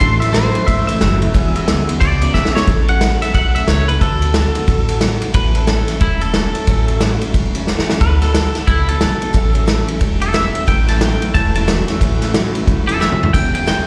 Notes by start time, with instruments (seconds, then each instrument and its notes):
0.00 upright bass A1, steel-string acoustic guitar A2 E3 F#3 A3 C#4 A4, clean electric guitar A2 E3 C6, kick, ride
0.20 clean electric guitar A2 E3 E5, steel-string acoustic guitar F#3 A3 C#4 A4, ride
0.33 steel-string acoustic guitar A2 E3 F#3 A3 C#4 A4, clean electric guitar A2 F#3 C5, snare, ride
0.54 clean electric guitar A2 E3, steel-string acoustic guitar F#3 A3 C#4 A4, ride
0.66 upright bass G#1, clean electric guitar A2 E3 E5, steel-string acoustic guitar F#3 A3 C#4 A4, kick, ride
0.87 clean electric guitar A2 E3 E5, steel-string acoustic guitar F#3 A3 C#4 A4, ride
1.01 upright bass F#1, clean electric guitar A2 F#3, steel-string acoustic guitar A2 E3 F#3 A3 C#4 A4, snare, ride
1.21 clean electric guitar A2 E3, steel-string acoustic guitar F#3 A3 C#4 A4, ride
1.34 upright bass E1, clean electric guitar E2 B2, steel-string acoustic guitar E3 G#3 B3 C#4 G#4, kick, ride
1.55 clean electric guitar E2 B2, steel-string acoustic guitar B3 C#4 G#4, ride
1.67 upright bass D2, clean electric guitar E2 C#3, steel-string acoustic guitar E3 G#3 B3 C#4 G#4, snare, ride
1.88 clean electric guitar E2 B2, steel-string acoustic guitar B3 C#4 G#4, ride
2.01 upright bass C#2, clean electric guitar E2 B2 D5, steel-string acoustic guitar G#3 B3 C#4 G#4, kick, ride
2.21 clean electric guitar E2 B2, steel-string acoustic guitar B3 C#4 G#4, ride
2.34 upright bass B1, clean electric guitar C#3 E5, steel-string acoustic guitar E3 G#3 B3 C#4 G#4, kick, snare
2.45 snare
2.55 clean electric guitar E2 B2 C#5, steel-string acoustic guitar B3 C#4 G#4, snare
2.67 upright bass A1, steel-string acoustic guitar A2 E3 F#3 A3 C#4 A4, kick, ride
2.88 steel-string acoustic guitar F#3 A3 C#4 A4, clean electric guitar F#5, ride
3.01 steel-string acoustic guitar A2 E3 F#3 A3 C#4 A4, snare, ride
3.22 steel-string acoustic guitar F#3 A3 C#4 A4, clean electric guitar E5, snare, ride
3.34 upright bass B1, steel-string acoustic guitar F#3 A3 C#4 A4, clean electric guitar F#5, kick, ride
3.55 steel-string acoustic guitar F#3 A3 C#4 A4, clean electric guitar E5, ride
3.67 upright bass C#2, steel-string acoustic guitar A2 E3 F#3 A3 C#4 A4, clean electric guitar C#5, snare, ride
3.88 steel-string acoustic guitar F#3 A3 C#4 A4, clean electric guitar B4, ride
4.01 upright bass D2, steel-string acoustic guitar D3 F#3 B3 F#4 A4, clean electric guitar A4, kick, ride
4.22 steel-string acoustic guitar B3 F#4 A4, ride
4.34 steel-string acoustic guitar D3 F#3 B3 F#4 A4, snare, ride
4.55 steel-string acoustic guitar B3 F#4 A4, ride
4.67 upright bass A1, steel-string acoustic guitar F#3 B3 F#4 A4, kick, ride
4.88 steel-string acoustic guitar B3 F#4 A4, ride
5.01 steel-string acoustic guitar D3 F#3 B3 F#4 A4, snare, ride
5.21 steel-string acoustic guitar B3 F#4 A4, ride
5.34 upright bass A1, steel-string acoustic guitar A2 E3 F#3 A3 C#4 A4, clean electric guitar B4, kick, ride
5.55 steel-string acoustic guitar F#3 A3 C#4 A4, clean electric guitar A4, ride
5.67 steel-string acoustic guitar A2 E3 F#3 A3 C#4 A4, snare, ride
5.88 steel-string acoustic guitar F#3 A3 C#4 A4, snare, ride
6.00 upright bass E1, steel-string acoustic guitar F#3 A3 C#4 A4, clean electric guitar E4, kick, ride
6.21 steel-string acoustic guitar F#3 A3 C#4 A4, clean electric guitar A4, ride
6.34 steel-string acoustic guitar A2 E3 F#3 A3 C#4 A4, snare, ride
6.54 steel-string acoustic guitar F#3 A3 C#4 A4, ride
6.67 upright bass A1, steel-string acoustic guitar A2 E3 F#3 A3 C#4 A4, kick, ride
6.88 steel-string acoustic guitar F#3 A3 C#4 A4, ride
7.00 steel-string acoustic guitar A2 E3 F#3 A3 C#4 A4, snare, ride
7.21 steel-string acoustic guitar F#3 A3 C#4 A4, ride
7.34 upright bass E1, steel-string acoustic guitar F#3 A3 C#4 A4, kick, ride
7.55 steel-string acoustic guitar F#3 A3 C#4 A4, ride
7.67 steel-string acoustic guitar A2 E3 F#3 A3 C#4 A4, snare
7.79 snare
7.89 steel-string acoustic guitar F#3 A3 C#4 A4, snare
8.01 upright bass D2, steel-string acoustic guitar D3 F#3 B3 F#4 A4, clean electric guitar B4, kick, ride
8.21 steel-string acoustic guitar B3 F#4 A4, clean electric guitar A4, snare, ride
8.34 steel-string acoustic guitar D3 F#3 B3 F#4 A4, snare, ride
8.55 steel-string acoustic guitar B3 F#4 A4, snare, ride
8.67 upright bass C#2, steel-string acoustic guitar F#3 B3 F#4 A4, clean electric guitar E4, kick, ride
8.89 steel-string acoustic guitar B3 F#4 A4, clean electric guitar A4, ride
9.01 upright bass B1, steel-string acoustic guitar D3 F#3 B3 F#4 A4, snare, ride
9.20 steel-string acoustic guitar B3 F#4 A4, ride
9.33 upright bass A1, steel-string acoustic guitar A2 E3 F#3 A3 C#4 A4, kick, ride
9.53 steel-string acoustic guitar F#3 A3 C#4 A4, ride
9.66 steel-string acoustic guitar A2 E3 F#3 A3 C#4 A4, snare, ride
9.87 steel-string acoustic guitar F#3 A3 C#4 A4, ride
9.99 upright bass E1, steel-string acoustic guitar F#3 A3 C#4 A4, kick, ride
10.20 steel-string acoustic guitar F#3 A3 C#4 A4, clean electric guitar A4, ride
10.33 steel-string acoustic guitar A2 E3 F#3 A3 C#4 A4, clean electric guitar E5, snare, ride
10.53 steel-string acoustic guitar F#3 A3 C#4 A4, ride
10.67 upright bass A1, steel-string acoustic guitar A2 E3 F#3 A3 C#4 A4, clean electric guitar A2 E3 G5, kick, ride
10.87 clean electric guitar A2 E3 A5, steel-string acoustic guitar F#3 A3 C#4 A4, snare, ride
11.00 steel-string acoustic guitar A2 E3 F#3 A3 C#4 A4, clean electric guitar A2 F#3 G5, snare, ride
11.21 clean electric guitar A2 E3, steel-string acoustic guitar F#3 A3 C#4 A4, ride
11.34 upright bass E1, clean electric guitar A2 E3 A5, steel-string acoustic guitar F#3 A3 C#4 A4, kick, ride
11.54 clean electric guitar A2 E3 A5, steel-string acoustic guitar F#3 A3 C#4 A4, ride
11.67 steel-string acoustic guitar A2 E3 F#3 A3 C#4 A4, clean electric guitar A2 F#3, snare, ride
11.88 clean electric guitar A2 E3, steel-string acoustic guitar F#3 A3 C#4 A4, snare, ride
12.01 upright bass A1, clean electric guitar A2 E3, steel-string acoustic guitar A2 E3 F#3 A3 C#4 A4, kick, ride
12.21 clean electric guitar A2 E3, steel-string acoustic guitar F#3 A3 C#4 A4, snare, ride
12.34 clean electric guitar A2 F#3, steel-string acoustic guitar A2 E3 F#3 A3 C#4 A4, snare, ride
12.55 clean electric guitar A2 E3, steel-string acoustic guitar F#3 A3 C#4 A4, ride
12.67 upright bass E1, clean electric guitar A2 E3, steel-string acoustic guitar F#3 A3 C#4 A4, kick, ride
12.87 clean electric guitar A2 E3 A4, steel-string acoustic guitar F#3 A3 C#4 A4, ride
13.00 clean electric guitar A2 F#3 E5, steel-string acoustic guitar A2 E3 F#3 A3 C#4 A4, snare
13.12 mid tom
13.21 clean electric guitar A2 E3, steel-string acoustic guitar F#3 A3 C#4 A4, floor tom
13.33 upright bass E1, clean electric guitar E2 B2 G5, steel-string acoustic guitar E3 G#3 B3 C#4 G#4, kick, ride, splash
13.53 clean electric guitar E2 B2 G5, steel-string acoustic guitar B3 C#4 G#4, ride
13.66 clean electric guitar E2 C#3 G5, steel-string acoustic guitar E3 G#3 B3 C#4 G#4, snare, ride